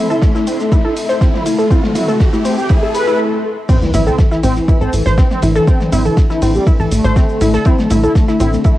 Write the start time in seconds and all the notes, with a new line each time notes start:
Already playing: C4 E4 A4 E5 C6, riser
0.10 E4 A4, shaker
0.21 A3, kick, snare, ride, shaker
0.35 A3 E4, snare, shaker
0.47 C4 E4, open hi-hat, ride, shaker
0.59 A3, snare, shaker
0.72 A3 E4, kick, ride, shaker
0.84 E4 A4
0.96 A3, open hi-hat, ride, shaker
1.09 A3 C5, snare, shaker
1.21 A3 C4, kick, snare, ride, shaker
1.34 E4, snare, mid tom
1.46 A3 E4, open hi-hat, ride, shaker
1.59 A3 A4, shaker
1.71 C4 E4, kick, ride, shaker
1.84 A3, snare, mid tom
1.95 E4, mid tom, open hi-hat, ride, shaker
2.08 A3 A4, shaker
2.20 kick, snare, ride, shaker
2.33 A3 E4, snare, shaker
2.45 A3 C4, open hi-hat, shaker
2.58 G4, shaker
2.69 A3 E4, kick, ride, swell, shaker
2.82 A3 A4
2.94 B4, open hi-hat, ride, shaker
3.08 E4, shaker
3.69 D3 A3 C4, kick, crash, ride, impact, shaker
3.82 E3, snare, mid tom, shaker
3.94 A1 E3 E4, mid tom, open hi-hat, ride, shaker
4.06 C4 A4, shaker
4.18 E3, kick, snare, ride, shaker
4.31 E3 E4, snare, shaker
4.43 A1 C4, open hi-hat, ride, shaker
4.56 E3, snare, shaker
4.68 E3 E4, kick, ride, shaker
4.81 A1 C4 A4, shaker
4.93 A1 E3, open hi-hat, ride, shaker
5.06 A1 E3 C5, snare, shaker
5.18 E3 C4, kick, snare, ride, shaker
5.30 C4, snare, mid tom, shaker
5.42 A1 E3 E4, open hi-hat, ride, shaker
5.55 E3 A4, shaker
5.67 C4, kick, ride, shaker
5.80 E3, snare, mid tom, shaker
5.92 A1 C4 E4, mid tom, open hi-hat, ride, shaker
6.05 E3 A4, shaker
6.17 kick, snare, ride, shaker
6.30 E3 E4, snare, shaker
6.42 A1 E3 C4, open hi-hat, shaker
6.55 G3, shaker
6.67 E3 E4, kick, ride, shaker
6.80 A1 E3 A4, shaker
6.91 A1 A3, open hi-hat, ride, shaker
7.04 A1 C5, shaker
7.16 C4, kick, snare, ride, shaker
7.29 shaker
7.41 A1 E4, open hi-hat, ride, shaker
7.54 A4, snare, shaker
7.65 C4 E4, kick, ride, shaker
7.79 A3, snare, mid tom, shaker
7.90 A1 A3 E4, mid tom, open hi-hat, ride, shaker
8.03 E4 A4, shaker
8.15 A3, kick, snare, ride, shaker
8.28 A3 E4, snare, shaker
8.40 A1 C4 E4, open hi-hat, ride, shaker
8.53 A3, snare, shaker
8.64 A3 E4, kick, ride, shaker